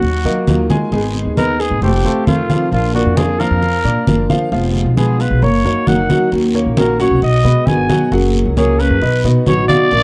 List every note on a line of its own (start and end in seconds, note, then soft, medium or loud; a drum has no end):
0.00 0.24 D#2 medium
0.00 0.17 F#3 medium
0.00 0.17 F#4 medium
0.00 0.71 F#4 medium
0.00 0.17 F#5 medium
0.00 muted steel-string acoustic guitar stroke medium
0.00 high conga soft
0.00 long guiro medium
0.25 0.36 D#3 medium
0.25 0.46 F#3 soft
0.25 0.62 A#3 medium
0.25 0.47 A#3 soft
0.25 0.46 F4 medium
0.25 0.62 A#4 medium
0.25 0.62 D#5 medium
0.25 high conga soft
0.47 0.69 D#2 medium
0.47 0.91 D#3 medium
0.47 0.92 F#3 medium
0.47 0.92 A#3 medium
0.47 0.92 F4 medium
0.47 high conga medium
0.47 short guiro medium
0.70 0.88 G#3 medium
0.70 0.89 G#4 medium
0.70 0.89 G#5 medium
0.70 high conga medium
0.70 short guiro medium
0.92 1.24 G#1 medium
0.92 1.36 D#3 medium
0.92 1.29 G#3 medium
0.92 1.36 G#3 medium
0.92 1.37 B3 medium
0.92 1.37 D#4 medium
0.92 1.29 G#4 medium
0.92 1.37 G#4 medium
0.92 1.30 G#5 medium
0.92 high conga soft
0.92 long guiro medium
1.15 high conga soft
1.25 1.69 D#2 medium
1.37 1.59 D#3 medium
1.37 1.59 G#3 medium
1.37 1.74 B3 medium
1.37 1.59 B3 medium
1.37 1.59 D#4 medium
1.37 1.58 G#4 medium
1.37 1.62 A#4 medium
1.37 1.74 B4 medium
1.37 1.75 D#5 medium
1.37 high conga medium
1.37 short guiro medium
1.59 1.82 B3 soft
1.59 1.82 D#4 soft
1.59 1.81 G#4 soft
1.59 1.83 G#4 loud
1.59 short guiro medium
1.71 1.81 G#1 medium
1.81 2.03 F1 loud
1.81 2.01 A3 medium
1.81 2.25 G4 medium
1.81 2.01 A4 medium
1.81 2.01 C5 medium
1.81 muted steel-string acoustic guitar stroke medium
1.81 high conga soft
1.81 long guiro medium
2.04 2.15 F2 medium
2.04 2.42 A3 medium
2.04 2.26 A3 soft
2.04 2.26 C4 soft
2.04 2.26 F4 medium
2.04 2.42 A4 medium
2.04 2.42 C5 medium
2.04 high conga soft
2.26 2.48 F2 medium
2.26 2.71 C3 medium
2.26 2.71 D#3 medium
2.26 2.71 A3 medium
2.26 2.71 C4 medium
2.26 2.69 F4 medium
2.26 2.72 F4 medium
2.26 high conga medium
2.26 short guiro medium
2.50 2.87 F3 medium
2.50 2.87 F4 medium
2.50 2.87 F5 medium
2.50 high conga medium
2.50 short guiro medium
2.71 3.04 A#1 medium
2.71 3.15 F3 medium
2.71 3.16 A#3 medium
2.71 3.17 D4 medium
2.71 2.93 F4 medium
2.71 3.17 F4 medium
2.71 high conga soft
2.71 long guiro medium
2.94 3.32 A#3 medium
2.94 3.18 F#4 medium
2.94 3.32 A#4 medium
2.94 3.32 D5 medium
2.94 high conga soft
3.06 3.49 F2 medium
3.17 3.39 F3 medium
3.17 3.39 A#3 medium
3.17 3.39 D4 medium
3.17 3.38 F4 medium
3.17 3.41 G#4 medium
3.17 high conga loud
3.17 short guiro medium
3.39 3.77 F3 medium
3.39 3.61 A#3 soft
3.39 3.62 D4 soft
3.39 3.61 F4 medium
3.39 3.77 F4 medium
3.39 4.29 A#4 loud
3.39 3.77 F5 medium
3.39 high conga soft
3.39 short guiro medium
3.51 3.83 F2 medium
3.62 muted steel-string acoustic guitar stroke medium
3.62 high conga soft
3.62 long guiro medium
3.84 3.95 A#2 medium
3.84 4.21 A#3 medium
3.84 4.06 A#3 soft
3.84 4.07 D4 soft
3.84 4.06 F4 soft
3.84 4.22 A#4 medium
3.84 4.22 D5 medium
3.84 high conga soft
4.07 4.29 F#1 medium
4.07 4.51 F3 medium
4.07 4.51 A#3 medium
4.07 4.52 D4 medium
4.07 4.52 F4 medium
4.07 high conga medium
4.07 short guiro medium
4.30 4.48 F3 medium
4.30 4.48 F4 medium
4.30 4.48 F5 medium
4.30 high conga medium
4.30 short guiro medium
4.52 4.84 F1 medium
4.52 4.96 F3 medium
4.52 4.89 F3 medium
4.52 4.96 G#3 medium
4.52 4.97 B3 medium
4.52 4.89 F4 medium
4.52 4.97 F4 medium
4.52 4.89 F5 medium
4.52 high conga soft
4.52 long guiro medium
4.75 high conga soft
4.86 5.29 B1 medium
4.97 5.19 F3 medium
4.97 5.34 G#3 medium
4.97 5.19 G#3 medium
4.97 5.19 B3 medium
4.97 5.18 F4 medium
4.97 5.34 G#4 medium
4.97 5.22 G#4 medium
4.97 5.34 B4 medium
4.97 high conga medium
4.97 short guiro medium
5.19 5.42 G#3 soft
5.19 5.42 B3 soft
5.19 5.41 F4 soft
5.19 5.45 B4 medium
5.19 short guiro medium
5.31 5.41 B1 medium
5.42 5.64 F#1 loud
5.42 5.61 A#3 medium
5.42 5.61 A#4 medium
5.42 5.61 C#5 medium
5.42 5.89 C#5 medium
5.42 muted steel-string acoustic guitar stroke medium
5.42 high conga soft
5.42 long guiro medium
5.64 5.75 F#2 medium
5.64 6.02 A#3 medium
5.64 5.86 A#3 soft
5.64 5.86 D#4 soft
5.64 5.86 F#4 medium
5.64 6.02 A#4 medium
5.64 6.02 C#5 medium
5.64 high conga soft
5.87 6.09 F#1 medium
5.87 6.31 F#3 medium
5.87 6.31 A#3 medium
5.87 6.32 D#4 medium
5.87 6.32 F#4 medium
5.87 6.32 F#5 medium
5.87 high conga medium
5.87 short guiro medium
6.10 6.46 F#3 medium
6.10 6.47 F#4 medium
6.10 6.47 F#5 medium
6.10 high conga medium
6.10 short guiro medium
6.32 6.64 D#2 medium
6.32 6.76 D#3 medium
6.32 6.76 A#3 medium
6.32 6.76 C#4 medium
6.32 6.77 F#4 medium
6.32 high conga soft
6.32 long guiro medium
6.55 6.91 A#3 medium
6.55 6.92 A#4 medium
6.55 6.92 C#5 medium
6.55 high conga soft
6.66 7.09 A#1 medium
6.77 6.98 D#3 medium
6.77 6.99 A#3 medium
6.77 6.99 C#4 medium
6.77 6.98 F#4 medium
6.77 6.98 A#4 medium
6.77 high conga medium
6.77 short guiro medium
6.99 7.36 F#3 medium
6.99 7.22 A#3 soft
6.99 7.22 C#4 soft
6.99 7.21 F#4 medium
6.99 7.37 F#4 medium
6.99 7.21 C#5 medium
6.99 7.37 F#5 loud
6.99 high conga soft
6.99 short guiro medium
7.10 7.21 C2 medium
7.22 7.43 B1 loud
7.22 7.68 D#5 medium
7.22 muted steel-string acoustic guitar stroke medium
7.22 high conga soft
7.22 long guiro medium
7.44 7.55 B2 loud
7.44 7.66 G#3 soft
7.44 7.81 B3 medium
7.44 7.66 B3 soft
7.44 7.66 F#4 medium
7.44 7.81 B4 medium
7.44 7.82 D#5 medium
7.44 high conga soft
7.67 7.88 G1 medium
7.67 8.11 B2 medium
7.67 8.11 D#3 medium
7.67 8.11 G#3 medium
7.67 8.11 B3 medium
7.67 8.12 F#4 medium
7.67 8.12 G#5 medium
7.67 high conga medium
7.67 short guiro medium
7.89 8.08 F#3 medium
7.89 8.08 F#4 medium
7.89 8.08 F#5 medium
7.89 high conga medium
7.89 short guiro medium
8.11 8.44 F#1 medium
8.11 8.55 F#3 medium
8.11 8.49 F#3 medium
8.11 8.56 A#3 medium
8.11 8.56 C#4 medium
8.11 8.49 F#4 medium
8.11 8.57 G#4 medium
8.11 8.49 F#5 medium
8.11 high conga soft
8.11 long guiro medium
8.35 high conga soft
8.45 8.88 C#2 medium
8.56 8.78 F#3 medium
8.56 8.94 A#3 medium
8.56 8.78 A#3 medium
8.56 8.78 C#4 medium
8.56 8.81 G#4 medium
8.56 8.78 G#4 medium
8.56 8.94 A#4 medium
8.56 8.94 C#5 medium
8.56 high conga medium
8.56 short guiro medium
8.79 9.01 A#3 soft
8.79 9.01 C#4 soft
8.79 9.01 G#4 medium
8.79 9.24 B4 loud
8.79 short guiro medium
8.90 9.01 F#2 medium
9.01 9.23 B1 medium
9.01 9.20 B3 medium
9.01 9.20 B4 medium
9.01 9.21 D#5 medium
9.01 muted steel-string acoustic guitar stroke medium
9.01 high conga soft
9.01 long guiro medium
9.24 9.35 B2 loud
9.24 9.61 B3 medium
9.24 9.46 B3 soft
9.24 9.46 D#4 soft
9.24 9.46 F#4 medium
9.24 9.62 B4 medium
9.24 9.62 D#5 medium
9.24 high conga soft
9.46 9.68 A1 medium
9.46 9.90 B2 medium
9.46 9.90 F#3 medium
9.46 9.91 B3 medium
9.46 9.91 D#4 medium
9.46 9.91 F#4 medium
9.46 9.68 C#5 loud
9.46 high conga medium
9.46 short guiro medium
9.68 10.03 D5 loud
9.68 10.03 F5 medium
9.68 high conga medium
9.68 short guiro medium
9.91 10.03 A#1 medium
9.91 10.03 F3 medium
9.91 10.03 A#3 medium
9.91 10.03 D4 medium
9.91 10.03 F4 medium
9.91 high conga soft
9.91 long guiro medium